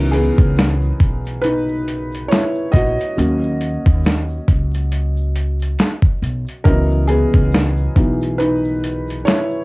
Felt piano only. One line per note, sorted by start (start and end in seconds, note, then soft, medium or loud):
0.00 3.13 E3 medium
0.00 3.13 F#3 soft
0.00 0.12 B3 medium
0.00 0.11 C#4 medium
0.00 1.43 D#4 medium
0.00 3.19 A#4 loud
0.11 1.40 B3 medium
0.11 1.47 G#4 medium
1.42 2.27 D#4 medium
1.42 2.32 B4 medium
2.28 2.71 E4 medium
2.28 2.74 C#5 medium
2.72 5.31 F#4 medium
2.72 5.30 D#5 loud
3.17 4.44 F#3 medium
3.17 4.44 A#3 soft
3.17 4.44 C#4 medium
6.64 7.94 E3 medium
6.64 7.95 F#3 soft
6.64 7.08 B3 soft
6.64 7.06 C#4 medium
6.64 7.09 A#4 medium
6.64 9.64 D#5 medium
7.07 7.95 B3 medium
7.07 8.42 G#4 loud
7.96 8.35 E3 soft
7.96 8.35 F#3 soft
7.96 8.35 B3 soft
7.96 8.36 D#4 medium
8.38 9.23 D#4 medium
8.38 9.22 B4 medium
9.25 9.64 E4 medium
9.25 9.64 C#5 loud